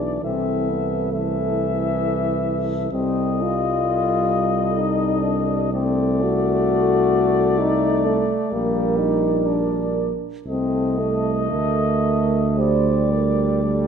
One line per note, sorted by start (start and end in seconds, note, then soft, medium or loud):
0.00 0.22 B1 soft
0.00 0.19 E3 soft
0.00 0.23 D4 medium
0.00 0.19 D5 soft
0.22 2.88 C2 soft
0.22 1.10 E3 soft
0.22 0.70 C4 medium
0.22 1.11 A4 soft
0.22 1.11 E5 soft
0.68 1.14 B3 medium
1.12 2.88 E3 medium
1.12 2.00 A3 medium
1.12 2.88 A4 soft
1.12 2.88 E5 medium
2.91 8.36 C2 medium
2.91 5.69 G3 medium
2.91 3.43 C4 medium
2.91 8.49 A4 medium
2.91 5.70 D#5 medium
3.42 4.79 F4 medium
4.78 5.23 D#4 medium
5.22 5.72 D4 medium
5.72 8.54 A3 medium
5.72 6.24 C4 medium
5.72 10.12 D5 medium
6.22 7.60 F#4 medium
7.59 8.07 D#4 medium
8.05 8.53 A3 medium
8.52 10.13 A#1 medium
8.52 10.16 G3 medium
8.52 8.99 A#3 medium
8.52 10.30 A#4 medium
8.98 9.47 D#4 medium
9.46 10.15 D4 medium
10.45 11.49 C2 soft
10.45 12.61 A3 medium
10.45 11.00 C4 medium
10.45 11.52 A4 medium
10.45 12.62 D#5 medium
10.98 11.50 A3 medium
11.51 13.87 D2 medium
11.51 12.60 A3 medium
11.51 12.49 A#4 soft
12.57 13.63 G3 medium
12.57 13.64 G3 medium
12.57 13.07 C5 medium
12.57 13.87 D5 medium
13.10 13.63 A#4 medium
13.63 13.87 G3 medium
13.63 13.87 A4 medium